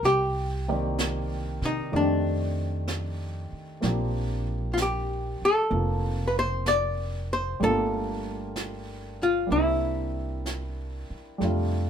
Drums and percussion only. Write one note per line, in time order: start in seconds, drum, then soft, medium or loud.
0.04 brush sweep soft
0.04 snare soft
0.98 brush sweep soft
0.98 snare soft
0.98 hi-hat pedal soft
1.62 snare soft
1.93 brush sweep soft
2.87 brush sweep soft
2.87 snare soft
2.87 hi-hat pedal soft
3.82 brush sweep soft
3.82 snare soft
4.77 brush sweep soft
4.77 snare soft
4.77 hi-hat pedal soft
5.71 brush sweep soft
6.66 brush sweep soft
6.66 snare soft
6.66 hi-hat pedal soft
7.61 brush sweep soft
8.56 brush sweep soft
8.56 snare soft
8.56 hi-hat pedal soft
9.51 brush sweep soft
10.46 brush sweep soft
10.46 snare soft
10.46 hi-hat pedal soft
11.41 brush sweep soft
11.41 snare soft